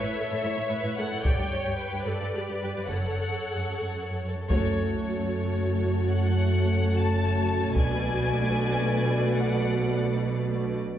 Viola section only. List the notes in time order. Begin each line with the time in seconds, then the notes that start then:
Already playing: B4
0.19 A4
0.45 C#5
0.72 B4
0.99 A4
1.25 D5
1.53 C#5
1.81 B4
2.08 A4
2.35 G4
2.62 B4
2.88 A4
4.51 A3 F#4
7.78 A3 F#4